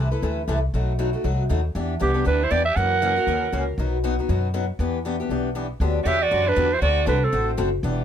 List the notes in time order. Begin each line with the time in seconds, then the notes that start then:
Already playing: C2
0.11 A3 E4 A4 B4
0.22 D2 C3 E3 A3 E4 A4 B4
0.48 C2 C3 E3 A3 E4 A4 B4
0.74 B1 B2 F#3 A3 D#4 F#4
0.99 B2 F#3 A3 D#4 F#4
1.13 A3 D#4 F#4
1.24 C2 B2 F#3 A3 D#4 F#4
1.49 D#2 B2 F#3 A3 D#4 F#4
1.75 E2 E3 B3 D4 G4
2.00 C2 E3 B3 D4 G4
2.14 B3 D4 G4
2.25 D2 E3 B3 D4 G4 B4
2.43 E4 C5
2.51 E2 E3 B3 D4 G4 D5
2.65 G4 E5
2.76 F#2 C#3 E3 A#3 C#4 F#4 A#4 F#5
3.02 C#3 E3 A#3 C#4 F#4
3.16 A#3 C#4 F#4
3.27 D#2 C#3 E3 A#3 C#4 F#4
3.52 C#2 C#3 E3 A#3 C#4 F#4
3.78 B1 B2 F#3 B3 D#4 F#4
4.04 B2 F#3 B3 D#4 F#4
4.19 B3 D#4 F#4
4.29 F#2 B2 F#3 B3 D#4 F#4
4.54 B2 F#3 B3 D#4 F#4
4.79 E2 E3 B3 D4 G4
5.05 E3 B3 D4 G4
5.20 B3 D4 G4
5.29 B1 E3 B3 D4 G4
5.55 E3 B3 D4 G4
5.80 D2 D3 F#3 B3 D4 G4
6.03 E2 D3 F#3 B3 D4 F#4 G4 D5 E5
6.22 F#4 D5
6.31 F#2 D3 F#3 B3 D4 G4
6.48 D4 B4
6.56 E2 D3 F#3 B3 D4 G4
6.73 E4 C5
6.81 D2 D3 A3 C4 F#4 A4 D5
7.06 C2 D3 A3 C4 D4 F#4 A4 B4
7.24 C4 A4
7.32 A1 D3 A3 C4 F#4 A4
7.57 F#1 D3 A3 C4 F#4 A4
7.83 E1 E3 B3 D4 G4